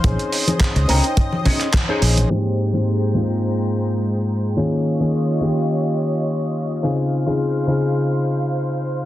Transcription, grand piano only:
X:1
M:4/4
L:1/16
Q:"Swing 16ths" 1/4=106
K:Ab
V:1 name="Grand piano"
[CDEA]3 [CDEA]3 [DEcg]6- [DEcg] [DEAc]3 | [A,,B,CEG]3 [A,,B,CEG]3 [A,,B,CEF]8- [A,,B,CEF]2 | [E,B,DFA]3 [E,B,DFA]3 [E,B,DFG]8- [E,B,DFG]2 | [D,CEFA]3 [D,CEFA]3 [D,CEFA]8- [D,CEFA]2 |]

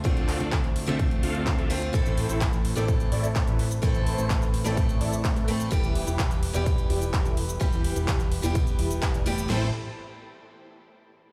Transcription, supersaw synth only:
X:1
M:4/4
L:1/16
Q:1/4=127
K:Am
V:1 name="Supersaw synth"
[CDFAd]3 [CDFAd]2 z2 [CDFAe] z2 [CDFAf]3 [CDFAe] z2 | [EAc]3 [EAc]2 z2 [EAd] z2 [EAd] z2 [EAB] z2 | [EAc]3 [EAc]2 z2 [EAd] z2 [EAd] z2 [EAB] z2 | [EGB]3 [EGB]2 z2 [EGd] z2 [EGd] z2 [EGA] z2 |
[EGB]3 [EGB]2 z2 [EGd] z2 [EGe]3 [EGd] z2 | [EAc]2 z12 z2 |]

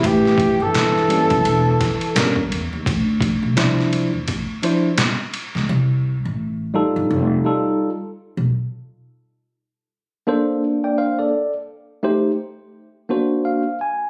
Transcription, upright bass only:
X:1
M:4/4
L:1/16
Q:"Swing 16ths" 1/4=85
K:Dm
V:1 name="Upright bass" clef=bass
A,,,3 G,,,4 F,,, E,,,2 z2 G,,, z E,, _E,, | D,,3 C,,4 E,, D,,2 z4 z ^C,, | C,,3 A,,,4 G,,, F,,,2 z4 z =B,,, | z16 |
z16 |]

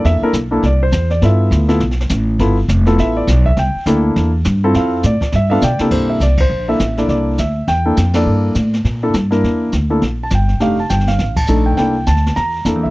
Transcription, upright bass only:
X:1
M:4/4
L:1/8
Q:"Swing" 1/4=205
K:Cmix
V:1 name="Upright bass" clef=bass
E,, z =B,,,2 C,,2 E,,2 | G,,2 D,,2 =B,,,2 A,,,2 | G,,,2 F,,,2 A,,,2 =B,,,2 | C,, z D,,2 E,,2 G,,2 |
F,,2 A,, z G,,2 =B,, z | G,,2 C,,2 B,,,2 A,,,2 | C,,2 D,,2 E,,2 F,,2 | G,,2 A,,2 B,,2 G,,2 |
E,,2 D,,2 B,,,2 G,,,2 | F,,,2 G,,,2 A,,,2 B,,,2 | C,,2 D,,2 E,,2 (3F,, E,, C,, |]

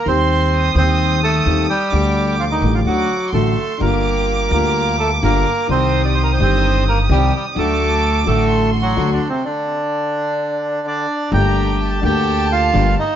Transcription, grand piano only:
X:1
M:4/4
L:1/8
Q:1/4=128
K:Gm
V:1 name="Grand piano" clef=bass
[E,,E,G,CG]3 [E,,E,G,CG]3 [E,,E,G,CG] z | [D,,D,G,A,G]3 [A,,,A,,D,G,A,G] [D,,D,^F,A,^F] z [A,,,A,,D,F,A,F] z | [G,,,G,,D,G,B,F]3 [D,,D,G,B,F]3 [G,,,G,,D,G,B,F] z | [C,,C,E,G,CG]3 [G,,,G,,E,G,CG]3 [C,,C,E,G,CG] z |
[D,,D,^F,A,^F]3 [A,,,A,,D,F,A,F]3 [D,,D,F,A,F] z | z8 | [G,,,G,,D,A,B,G]3 [D,,D,A,B,G]3 [G,,,G,,D,A,B,G] z |]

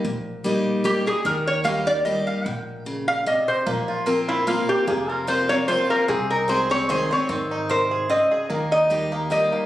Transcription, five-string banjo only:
X:1
M:3/4
L:1/8
Q:"Swing" 1/4=149
K:Ebmix
V:1 name="Five-string banjo"
z6 | z6 | z6 | B, F B F B, F |
B, F F B, F B, | C E A C A C | C E B A C A | B, E G B, G B, |]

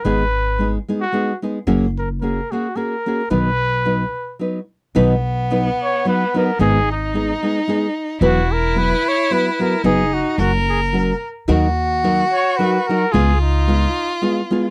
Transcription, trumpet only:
X:1
M:3/4
L:1/16
Q:"Swing" 1/4=110
K:B
V:1 name="Trumpet"
B4- B z2 F3 z2 | z2 A2 A2 F2 A4 | B8 z4 | z6 c2 B2 A2 |
G2 D6 z4 | F2 A2 B2 c2 B2 A2 | G2 F2 F2 G2 A3 z | z6 c2 B2 A2 |
G2 D6 z4 |]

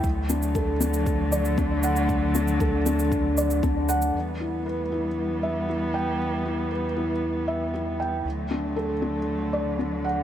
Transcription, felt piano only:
X:1
M:4/4
L:1/8
Q:1/4=117
K:Em
V:1 name="Felt piano"
z D A D z d D f | z D A D z d D f | z E B E z e E g | z E B E z e E g |
z D A D z d D f |]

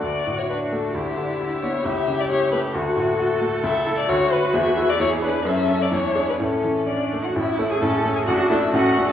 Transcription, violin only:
X:1
M:2/4
L:1/16
Q:1/4=132
K:D
V:1 name="Violin"
d3 c B2 A2 | G6 c2 | e3 d c2 B2 | A6 z2 |
[K:A] e3 d c2 B2 | e3 d c2 B2 | e3 d c3 B | A4 d3 f |
e3 g a3 g | f2 e2 f3 a |]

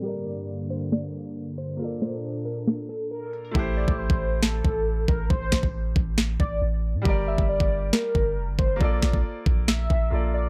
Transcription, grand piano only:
X:1
M:4/4
L:1/8
Q:1/4=137
K:Aphr
V:1 name="Grand piano"
[G,GBd]8 | [B,FAd]8 | [A,EGc]8- | [A,EGc]8 |
[G,GBd]8 | [B,FAd]6 [B,FAd]2 |]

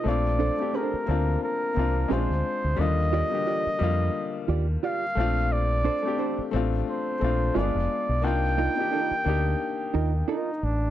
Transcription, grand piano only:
X:1
M:4/4
L:1/16
Q:"Swing 16ths" 1/4=88
K:Bb
V:1 name="Grand piano"
[A,CDF]3 [A,CDG]3 [B,CDF]4 [B,CDF]2 [_A,C_D=DF]4 | [D,G,B,F]3 [D,G,B,G]3 [D,G,B,F]6- [D,G,B,F] z [A,CDF]2- | [A,CDF]2 z [A,CDG]3 [A,CDF]4 [A,CDF]2 [_A,B,=B,DF]4 | [B,DEF]3 [B,DEG]3 [B,DEG]6- [B,DEG] z3 |]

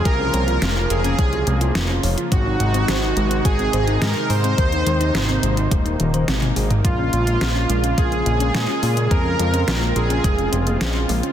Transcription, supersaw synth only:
X:1
M:4/4
L:1/8
Q:1/4=106
K:Bbm
V:1 name="Supersaw synth"
B3 A3 z2 | G4 A2 B c- | c6 z2 | F4 A4 |
B3 A3 z2 |]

